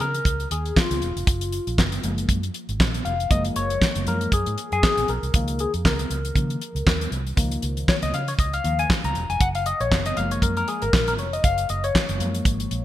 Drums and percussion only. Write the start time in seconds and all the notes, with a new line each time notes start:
0.00 closed hi-hat
0.15 closed hi-hat
0.25 kick, closed hi-hat
0.40 closed hi-hat
0.51 closed hi-hat
0.66 closed hi-hat
0.76 kick, snare, clap
0.91 closed hi-hat
1.02 closed hi-hat
1.17 closed hi-hat
1.27 kick, closed hi-hat
1.41 closed hi-hat
1.52 closed hi-hat
1.67 closed hi-hat
1.78 kick, snare, clap
1.92 closed hi-hat
2.03 closed hi-hat
2.18 closed hi-hat
2.29 kick, closed hi-hat
2.43 closed hi-hat
2.54 closed hi-hat
2.69 closed hi-hat
2.80 kick, snare, clap
2.94 closed hi-hat
3.05 closed hi-hat
3.20 closed hi-hat
3.31 kick, closed hi-hat
3.45 closed hi-hat
3.56 closed hi-hat
3.70 closed hi-hat
3.82 kick, snare, clap
3.95 closed hi-hat
4.07 closed hi-hat
4.21 closed hi-hat
4.32 kick, closed hi-hat
4.46 closed hi-hat
4.58 closed hi-hat
4.72 closed hi-hat
4.83 kick, snare, clap
4.97 closed hi-hat
5.08 closed hi-hat
5.23 closed hi-hat
5.34 kick, closed hi-hat
5.48 closed hi-hat
5.59 closed hi-hat
5.74 closed hi-hat
5.85 kick, snare, clap
5.99 closed hi-hat
6.11 closed hi-hat
6.25 closed hi-hat
6.36 kick, closed hi-hat
6.50 closed hi-hat
6.61 closed hi-hat
6.76 closed hi-hat
6.87 kick, snare, clap
7.01 closed hi-hat
7.12 closed hi-hat
7.27 closed hi-hat
7.37 kick, closed hi-hat
7.51 closed hi-hat
7.62 closed hi-hat
7.77 closed hi-hat
7.88 kick, snare, clap
8.02 closed hi-hat
8.14 closed hi-hat
8.28 closed hi-hat
8.39 kick, closed hi-hat
8.53 closed hi-hat
8.65 closed hi-hat
8.79 closed hi-hat
8.90 kick, snare, clap
9.04 closed hi-hat
9.15 closed hi-hat
9.30 closed hi-hat
9.40 kick, closed hi-hat
9.55 closed hi-hat
9.66 closed hi-hat
9.80 closed hi-hat
9.92 kick, snare, clap
10.06 closed hi-hat
10.17 closed hi-hat
10.31 closed hi-hat
10.42 kick, closed hi-hat
10.57 closed hi-hat
10.68 closed hi-hat
10.82 closed hi-hat
10.93 kick, snare, clap
11.08 closed hi-hat
11.19 closed hi-hat
11.33 closed hi-hat
11.44 kick, closed hi-hat
11.58 closed hi-hat
11.69 closed hi-hat
11.84 closed hi-hat
11.95 kick, snare, clap
12.09 closed hi-hat
12.20 closed hi-hat
12.34 closed hi-hat
12.45 kick, closed hi-hat
12.60 closed hi-hat
12.71 closed hi-hat